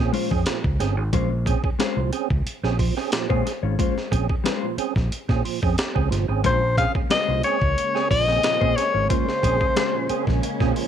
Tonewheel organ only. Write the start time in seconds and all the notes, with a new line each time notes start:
Already playing: C4 C#4
0.00 G#4
0.14 A#2 F3
0.31 C4 C#4 G#4
0.47 A#2 F3
0.80 C4 C#4 G#4
0.98 C#4 G#4
1.13 A#2 F3
1.46 C4 C#4 G#4
1.65 C#4 G#4
1.80 C#4 G#4
1.97 A#2 F3
2.13 C4 C#4 G#4
2.64 C4 C#4 G#4
2.79 A#2 F3
2.97 C4 C#4 G#4
3.12 A#2 F3
3.29 C4 C#4 G#4
3.45 C#4 G#4
3.79 A#2 F3
4.11 C4 C#4 G#4
4.29 C#4 G#4
4.45 C#4 G#4
4.63 A#2 F3
4.78 C4 C#4 G#4
5.29 C4 C#4 G#4
5.45 A#2 F3
5.62 C4 C#4 G#4
5.95 C4 C#4 G#4
6.10 A#2 F3
6.28 C4 C#4 G#4
6.44 A#2 F3
6.77 C4 C#4 G#4
6.96 C#4 G#4
7.11 C#4 G#4
7.29 A#2 F3
7.44 C4 C#4 G#4
7.95 C4 C#4 G#4
8.10 A#2 F3
8.28 C4 C#4 G#4
8.43 A#2 F3
8.61 C4 C#4 G#4
8.77 C#4 G#4
9.10 A#2 F3
9.43 C4 C#4 G#4
9.61 C#4 G#4
9.76 C#4 G#4
9.94 A#2 F3
10.10 C4 C#4 G#4
10.60 C4 C#4 G#4
10.76 A#2 F3